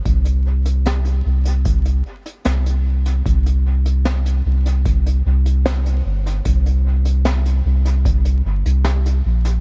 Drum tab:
HH |xx-xxx-xxx-xxx-x|xx-xxx-xxx-xxx-x|xx-xxx-xxx-xxx-x|
SD |----o-------o---|----o-------o---|----o-------o---|
BD |o-------o-------|o-------o-------|o-------o-------|